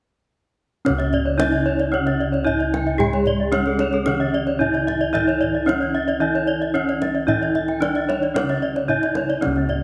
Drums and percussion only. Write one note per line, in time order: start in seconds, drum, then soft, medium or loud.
0.86 kendang high medium
0.86 kendang low medium
1.00 kendang slap soft
1.13 kendang low medium
1.40 kendang high medium
1.52 kendang slap soft
1.80 kendang slap soft
2.07 kendang slap soft
2.34 kendang slap soft
2.47 kendang low medium
2.60 kendang slap soft
2.74 kendang high medium
3.00 kendang low medium
3.13 kendang slap soft
3.26 kendang low medium
3.52 kendang high medium
3.66 kendang slap soft
3.79 kendang high soft
3.93 kendang slap soft
4.06 kendang high soft
4.47 kendang slap soft
4.61 kendang low medium
4.75 kendang slap soft
4.88 kendang high soft
4.88 kendang low soft
5.15 kendang high soft
5.15 kendang low medium
5.29 kendang slap soft
5.42 kendang low soft
5.69 kendang high soft
5.83 kendang slap soft
6.09 kendang slap soft
6.35 kendang slap soft
6.62 kendang slap soft
6.75 kendang low soft
6.89 kendang slap soft
7.02 kendang high medium
7.02 kendang low soft
7.28 kendang low medium
7.43 kendang slap soft
7.55 kendang low soft
7.68 kendang slap soft
7.82 kendang high medium
7.95 kendang slap soft
8.09 kendang high medium
8.23 kendang slap soft
8.36 kendang high medium
8.49 kendang slap soft
8.76 kendang slap soft
8.89 kendang low medium
9.03 kendang slap soft
9.15 kendang high medium
9.15 kendang low soft
9.30 kendang slap soft
9.42 kendang high soft
9.42 kendang low medium
9.56 kendang slap soft
9.69 kendang low soft